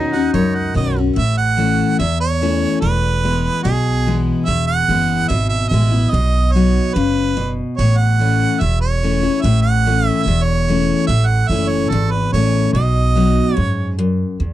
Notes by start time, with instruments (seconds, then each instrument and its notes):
Already playing: upright bass D#2, steel-string acoustic guitar B2 D#3 C#4 F#4, clean electric guitar D#4
0.12 steel-string acoustic guitar C#4 F#4, harmonica F#5
0.33 upright bass C#2, steel-string acoustic guitar F#2, harmonica C#5
0.55 harmonica F#5
0.75 upright bass B1, steel-string acoustic guitar B2 D#3 C#4 F#4, harmonica D#5
0.96 steel-string acoustic guitar C#4 F#4
1.16 upright bass A1, steel-string acoustic guitar A2, harmonica E5
1.37 harmonica F#5
1.57 steel-string acoustic guitar E3 A3 C#4 E4
1.99 upright bass E2, steel-string acoustic guitar E2, harmonica E5
2.20 harmonica C#5
2.41 steel-string acoustic guitar E3 A3 C#4 E4
2.81 upright bass E1, steel-string acoustic guitar E2, harmonica B4
3.24 steel-string acoustic guitar E3 G#3 B3 E4
3.63 upright bass B1, steel-string acoustic guitar B2, harmonica G#4
4.06 steel-string acoustic guitar E3 G#3 B3 E4
4.46 upright bass E1, steel-string acoustic guitar E2, harmonica E5
4.67 harmonica F#5
4.88 upright bass F#1, steel-string acoustic guitar E3 G#3 B3 E4
5.28 upright bass G#1, steel-string acoustic guitar B2, harmonica E5
5.49 harmonica E5
5.68 upright bass A1, steel-string acoustic guitar E3, harmonica E5
5.73 steel-string acoustic guitar G#3 B3 E4
5.92 steel-string acoustic guitar B3 E4
6.10 upright bass B1, steel-string acoustic guitar B2, harmonica D#5
6.52 steel-string acoustic guitar F#3, harmonica C#5
6.56 steel-string acoustic guitar B3 D#4 F#4
6.93 upright bass F#1, steel-string acoustic guitar C#3, harmonica B4
7.37 steel-string acoustic guitar B2
7.76 upright bass A1, steel-string acoustic guitar A2, harmonica C#5
7.97 harmonica F#5
8.19 steel-string acoustic guitar E3 A3 C#4 E4
8.61 upright bass E1, steel-string acoustic guitar E2, harmonica E5
8.81 harmonica C#5
9.03 steel-string acoustic guitar E3 A3 C#4 E4
9.23 steel-string acoustic guitar C#4 E4
9.41 upright bass A1, steel-string acoustic guitar A2, harmonica E5
9.61 harmonica F#5
9.86 steel-string acoustic guitar E3 A3 C#4 E4
10.06 harmonica E5
10.23 upright bass E1, harmonica E5
10.28 steel-string acoustic guitar E2
10.43 harmonica C#5
10.68 steel-string acoustic guitar E3 A3 C#4 E4
11.07 upright bass A1, steel-string acoustic guitar A2, harmonica E5
11.26 harmonica F#5
11.48 upright bass F#1, steel-string acoustic guitar E3 A3, harmonica E5
11.52 steel-string acoustic guitar C#4 E4
11.69 harmonica C#5
11.89 upright bass G#1, steel-string acoustic guitar E2, harmonica A4
12.11 harmonica B4
12.33 upright bass A1, steel-string acoustic guitar E3 A3 C#4 E4, harmonica C#5
12.73 upright bass B1, steel-string acoustic guitar B2, harmonica D#5
13.15 steel-string acoustic guitar F#3 B3 D#4 F#4
13.55 upright bass F#2, steel-string acoustic guitar G#2, harmonica C#5
13.99 steel-string acoustic guitar F#2
14.40 upright bass E2, steel-string acoustic guitar E2